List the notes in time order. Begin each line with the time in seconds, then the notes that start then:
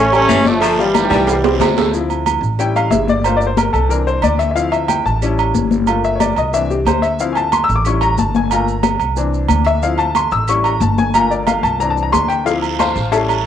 Already playing: A1 A3 C#4
0.12 G3 A3 C#4 G4 G5, high conga, low agogo, maracas
0.28 G1 E3, cowbell, high conga, short guiro, maracas
0.45 F3 A3 D4 D5 D6, cowbell, high conga, short guiro, maracas
0.61 F3, cowbell, high conga, low agogo, long guiro, maracas
0.79 E3 G3 G4 F5, high conga, maracas
0.94 cowbell, high bongo, high conga, low agogo, short guiro, maracas
1.05 high bongo
1.10 C2 G3 G4 G5, cowbell, high conga, high timbale, low agogo, short guiro, maracas
1.16 high bongo
1.27 cowbell, low bongo, high conga, high timbale, long guiro, maracas
1.38 low bongo
1.44 C4 C5 C6, high conga, low timbale, maracas
1.49 low bongo
1.59 D2 C3, cowbell, low bongo, high conga, low timbale, low agogo, short guiro, maracas
1.71 low bongo
1.77 A3 A4 A5, low timbale, low agogo, short guiro, maracas
1.81 low bongo
1.93 F3 C4 E4, high conga, maracas
2.10 high conga, low agogo, maracas
2.26 high conga, low agogo, maracas
2.41 A1, high conga, maracas
2.58 G3 C#4 E4 G5, high conga, low agogo, maracas
2.75 F5, high conga, low agogo, maracas
2.90 G1 E5, high conga, low timbale, maracas
3.08 D5, high conga, maracas
3.24 A3 A#3 F4 C5, high conga, low agogo, maracas
3.37 D5
3.41 maracas
3.47 C5
3.57 A#4, high conga, low agogo, maracas
3.73 C2 A4, high conga, low agogo, maracas
3.89 E3 C4 D4 A#4, high conga, maracas
4.07 C5, high conga, maracas
4.22 D2 D5, high conga, low agogo, maracas
4.39 E5, high conga, low agogo, maracas
4.51 E5
4.55 F3 C4 E4 F5, maracas
4.72 E5, high conga, low agogo, maracas
4.89 G5, high conga, low agogo, maracas
5.06 A1 A5, high conga, maracas
5.22 G3 C#4 E4, high conga, low agogo, maracas
5.39 high conga, low agogo, maracas
5.55 G1, high conga, maracas
5.71 high conga, maracas
5.87 A3 A#3 F4, high conga, low agogo, maracas
6.04 E5, high conga, maracas
6.16 C#5
6.20 D5, high conga, low agogo, maracas
6.36 C2 D#5, high conga, low agogo, maracas
6.53 E3 C4 D4 E5, high conga, maracas
6.70 G4, high conga, maracas
6.85 D2 C5, high conga, low timbale, low agogo, maracas
7.02 E5, high conga, low agogo, maracas
7.19 F3 C4 E4 F5, high conga, maracas
7.32 G#5, low agogo, maracas
7.37 A5, high conga
7.52 C6, high conga, low agogo, maracas
7.64 E6
7.69 A1, high conga, maracas
7.75 D6
7.85 G3 C#4 E4 C#6, high conga, low agogo, maracas
8.01 A#5, high conga, low agogo, maracas
8.18 G1 A5, high conga, maracas
8.35 G#5, high conga, maracas
8.51 A3 A#3 F4 A#5, high conga, low agogo, maracas
8.67 high conga, maracas
8.83 high conga, low agogo, maracas
8.99 C2, high conga, low agogo, maracas
9.16 E3 C4 D4, high conga, maracas
9.32 high conga, maracas
9.48 D2, high conga, low agogo, maracas
9.64 E5, high conga, low agogo, maracas
9.81 F3 C4 E4 F5, high conga, maracas
9.98 A5, high conga, low agogo, maracas
10.15 C6, high conga, low agogo, maracas
10.31 A1 E6, maracas
10.48 G3 C#4 E4 C#6, high conga, low agogo, maracas
10.64 A#5, high conga, low agogo, maracas
10.80 G1 A5, high conga, maracas
10.98 G#5, high conga, maracas
11.14 A3 A#3 F4 A#5, high conga, low agogo, maracas
11.30 D5, high conga, maracas
11.47 F5, high conga, low agogo, maracas
11.63 C2 A5, high conga, low agogo, maracas
11.80 E3 C4 D4 A#5, high conga, maracas
11.90 A5
11.97 high conga, maracas
12.03 A#5
12.12 D2 C6, high conga, low timbale, low agogo, maracas
12.28 G5, high conga, low agogo, maracas
12.45 F3 C4 E4 F5, cowbell, high conga, long guiro, maracas
12.62 high conga, low agogo, maracas
12.79 C5 F5 A5 C6, cowbell, high conga, low agogo, short guiro, maracas
12.96 A1, cowbell, high conga, short guiro, maracas
13.11 G3 C#4 E4 A4 C#5 E5 A5, cowbell, high conga, low agogo, long guiro, maracas
13.29 high conga, low agogo, maracas